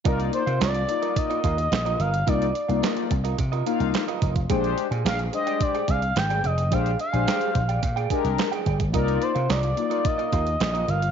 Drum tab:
HH |xxxxxxxxxxxxxxxx|xxxxxxxxxxxxxxxx|xxxxxxxxxxxxxxxx|xxxxxxxxxxxxxxxx|
CP |----x-------x---|----x-------x---|----x-------x---|----x-------x---|
SD |----o-------o---|----o-------o---|----o-------o---|----o-------o---|
BD |o-------o-o-----|o-----o-o-----oo|o-------o-o-----|o-----o-o-o---oo|

HH |xxxxxxxxxxxxxxxx|
CP |----x-------x---|
SD |----o-------o---|
BD |o-------o-o-----|